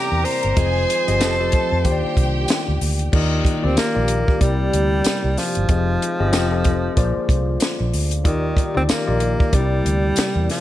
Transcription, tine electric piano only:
Already playing: C3 C4 E4 A#4 D5
0.56 F3 C4 F4 G#4 D#5
1.07 F3 C4 G4 G#4 D#5
1.20 F3 C4 G4 A4 D#5
1.39 F3 C4 G4 A4 D#5
1.84 D#3 A#3 F4 G4 C5
1.92 D5
3.12 D#3 A#3 F4 G4 D5
3.63 D#3 A#3 F4 G4 D5
3.94 D#3 A#3 F4 G4 D5
4.40 C3 C4 E4 A#4 D5
5.68 F3 C4 G4 G#4 D#5
6.19 F3 C4 G4 G#4 D#5
6.33 F3 C4 G4 A4 D#5
6.51 F3 C4 G4 A4 D#5
6.97 A#3 F4 G#4 C5 D5
8.24 D#3 D#4 F4 G4 D5
8.74 D#3 D#4 F4 G4 D5
9.06 D#3 D#4 F4 G4 D5
9.52 C3 C4 D4 A#4 D5
9.59 E4

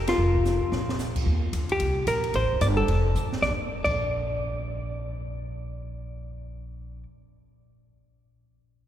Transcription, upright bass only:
Already playing: F1
0.18 F1
0.62 F2
0.72 A#1
1.26 D#2
1.53 D2
1.80 C2
2.07 A#1
2.34 A1
2.43 F1
2.53 D1
2.61 G1
2.88 F1
3.15 A1
3.42 A#1
3.85 A#1

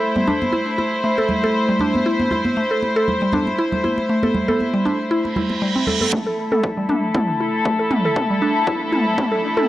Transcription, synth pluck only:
0.16 G3
0.28 D4
0.53 E4
0.78 E4
1.04 A3
1.18 A4
1.44 A4
1.69 G3
1.80 D4
2.06 E4
2.31 E4
2.57 A3
2.71 A4
2.96 A4
3.22 G3
3.33 D4
3.59 E4
3.84 E4
4.09 A3
4.23 A4
4.48 A4
4.74 G3
4.85 D4
5.11 E4
5.37 E4
5.62 G3
5.76 C4
5.87 A4
6.01 A4
6.13 A3
6.27 A4
6.52 A4
6.77 G3
6.89 D4
7.15 E4
7.40 E4
7.65 A3
7.79 A4
8.05 A4
8.30 G3
8.42 D4
8.67 E4
8.92 E4
9.18 A3
9.31 A4
9.57 A4

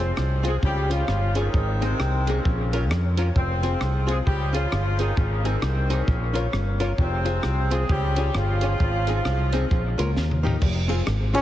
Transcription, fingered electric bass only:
Already playing: F1
0.18 C2
0.63 C#2
1.08 G1
1.54 G#1
1.99 C2
2.46 A#1
2.91 F2
3.36 F1
3.81 C2
4.27 C#2
4.73 G1
5.17 G#1
5.62 C2
6.08 A#1
6.54 G1
6.98 F1
7.44 C2
7.90 C#2
8.35 G1
8.80 G#1
9.25 C2
9.71 A#1
9.99 C#2
10.17 D#2
10.62 F1
11.07 G#1

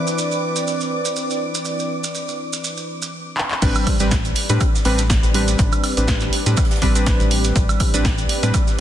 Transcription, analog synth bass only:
3.62 A1
4.00 A1
4.50 A2
4.85 A1
5.23 A1
5.59 A1
5.97 A1
6.46 A2
6.82 A1
7.20 A1
7.56 A1
7.94 A1
8.43 A2

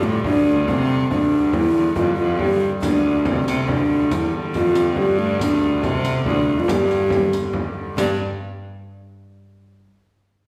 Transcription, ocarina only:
0.03 A3
0.25 D4
0.68 C4
1.11 D4
1.54 E4
1.95 F4
2.15 F4
2.38 G4
2.81 D4
3.26 C4
3.69 D4
4.12 E4
4.56 F4
4.98 G4
5.19 A3
5.42 D4
5.84 C4
6.28 D4
6.59 F4
6.70 G4
7.97 G4

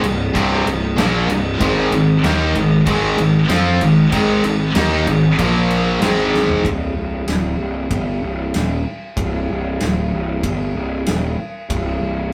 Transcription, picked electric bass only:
0.04 C1
0.35 C1
0.66 C1
0.98 A#1
1.29 C1
1.60 G#1
1.91 G#1
2.23 D#2
2.54 G#1
2.86 G#1
3.19 G#1
3.50 F2
3.82 G#1
4.12 G#1
4.44 G#1
4.76 D#2
5.07 G#1
5.39 A#1
6.01 G#1
6.65 C1
6.96 C1
7.27 D1
7.58 C1
7.91 G1
8.23 C1
8.55 D#1
8.87 muted picked electric bass stroke
9.17 C1
9.51 C1
9.82 D1
10.13 C1
10.44 G1
10.75 C1
11.08 D#1
11.39 muted picked electric bass stroke
11.70 C1
12.01 C1

